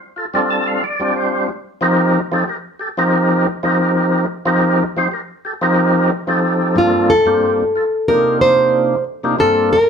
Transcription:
0.16 0.25 F4 soft
0.16 0.26 A4 soft
0.34 0.83 G3 loud
0.34 0.83 C4 medium
0.34 0.83 D4 medium
0.34 0.83 F4 medium
0.34 0.83 A4 loud
0.50 0.67 A5 medium
0.67 0.82 F5 medium
0.84 1.14 D5 medium
0.99 1.49 G3 medium
0.99 1.49 C4 medium
0.99 1.49 D4 medium
0.99 1.49 F4 medium
0.99 1.49 G4 medium
1.16 1.47 C5 medium
1.81 2.19 F3 loud
1.81 2.19 C4 medium
1.81 2.19 D#4 loud
1.81 2.20 G4 medium
1.81 2.20 A#4 loud
2.32 2.44 F3 medium
2.32 2.44 C4 medium
2.32 2.44 D#4 medium
2.32 2.45 G4 medium
2.32 2.45 A4 loud
2.48 2.56 G4 soft
2.48 2.57 A#4 soft
2.79 2.89 G4 soft
2.79 2.89 A4 soft
2.98 3.46 F3 loud
2.98 3.47 C4 medium
2.98 3.47 D#4 medium
2.98 3.47 G4 medium
2.98 3.47 A#4 loud
3.63 4.25 F3 medium
3.63 4.25 C4 medium
3.63 4.26 D#4 medium
3.63 4.26 G4 medium
3.63 4.26 A#4 medium
4.46 4.83 F3 loud
4.46 4.83 C4 medium
4.46 4.84 D#4 medium
4.46 4.84 G4 medium
4.46 4.84 A#4 loud
4.97 5.08 F3 medium
4.97 5.08 C4 medium
4.97 5.09 D#4 medium
4.97 5.09 G4 medium
4.97 5.09 C5 medium
5.12 5.20 G4 soft
5.12 5.21 A#4 soft
5.45 5.53 G4 soft
5.45 5.54 A4 soft
5.62 6.10 F3 loud
5.62 6.10 C4 medium
5.62 6.11 D#4 medium
5.62 6.11 G4 medium
5.62 6.11 A#4 loud
6.27 6.76 F3 medium
6.27 6.75 C4 medium
6.27 6.77 D#4 medium
6.27 6.77 G4 medium
6.27 6.76 A4 medium
6.75 7.13 G2 medium
6.75 7.14 A#3 medium
6.75 7.14 C4 medium
6.75 7.14 D4 medium
6.75 7.14 F4 medium
6.75 7.11 F4 medium
6.75 7.14 A4 medium
7.10 8.08 A4 medium
7.25 7.63 G2 medium
7.25 7.63 A#3 medium
7.25 7.63 C4 medium
7.25 7.63 D4 medium
7.25 7.64 F4 medium
7.25 7.64 G4 medium
7.76 7.84 F4 soft
7.76 7.85 A4 soft
8.08 8.95 C3 medium
8.08 8.95 A#3 medium
8.08 8.95 D4 medium
8.08 8.96 D#4 medium
8.08 8.96 F4 medium
8.08 8.96 G4 medium
8.08 8.41 A#4 loud
8.41 9.03 C5 medium
9.23 9.36 C3 medium
9.23 9.36 A#3 medium
9.23 9.36 D4 medium
9.23 9.36 D#4 medium
9.23 9.36 F4 medium
9.23 9.36 G4 medium
9.39 9.77 G2 medium
9.39 9.77 A#3 medium
9.39 9.77 C4 medium
9.39 9.77 D4 medium
9.39 9.77 F4 medium
9.39 9.71 A4 medium
9.39 9.77 A4 medium
9.73 9.89 A#4 medium

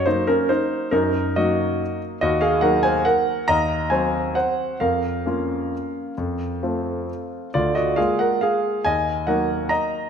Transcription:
0.06 0.88 F#3 soft
0.06 0.88 A#3 soft
0.06 0.26 D#4 soft
0.06 0.27 C5 medium
0.27 0.48 C#4 soft
0.27 0.49 A#4 medium
0.49 0.89 D#4 soft
0.49 0.92 C5 medium
0.91 1.36 F#2 soft
0.91 1.34 D#4 soft
0.91 1.37 A#4 medium
1.36 2.17 F#3 soft
1.36 2.17 A#3 soft
1.36 2.18 D#4 soft
1.36 1.97 F#4 soft
1.36 2.01 D#5 medium
2.21 2.61 D#2 soft
2.21 2.41 F#4 medium
2.21 2.41 D#5 medium
2.41 2.61 G#4 medium
2.41 2.62 F5 medium
2.61 3.44 F#3 soft
2.61 3.44 A#3 soft
2.61 3.44 D#4 soft
2.61 2.81 A#4 medium
2.61 2.82 F#5 medium
2.83 3.04 C5 medium
2.83 3.05 G#5 medium
3.05 3.45 A#4 medium
3.05 3.48 F#5 medium
3.48 3.90 D#2 soft
3.48 3.88 D#5 medium
3.48 3.91 A#5 medium
3.90 4.76 F#3 soft
3.90 4.76 C4 soft
3.90 4.32 C5 soft
3.90 4.35 G#5 medium
4.35 4.77 C5 soft
4.35 4.80 F#5 medium
4.80 5.24 F2 soft
4.80 7.05 A#4 soft
4.80 7.08 F5 medium
5.26 6.14 A#3 soft
5.26 6.14 C#4 soft
5.26 6.14 F4 soft
6.18 6.61 F2 soft
6.62 7.49 A3 soft
6.62 7.49 C4 soft
6.62 7.50 F4 soft
7.54 7.97 D2 soft
7.54 7.74 F4 soft
7.54 7.75 D5 medium
7.75 7.96 F#4 soft
7.75 7.97 D#5 medium
7.96 8.80 G#3 soft
7.96 8.80 A#3 soft
7.96 8.80 F4 soft
7.96 8.18 G#4 soft
7.96 8.19 F5 medium
8.19 8.40 A#4 soft
8.19 8.41 F#5 medium
8.41 8.82 G#4 soft
8.41 8.84 F5 medium
8.85 9.26 D#2 soft
8.85 9.24 D#5 medium
8.85 9.27 G#5 medium
9.27 10.08 F#3 soft
9.27 10.09 A#3 soft
9.27 10.09 D#4 soft
9.27 9.67 A#4 soft
9.27 9.70 F#5 medium
9.69 10.09 D#5 medium
9.69 10.10 A#5 medium

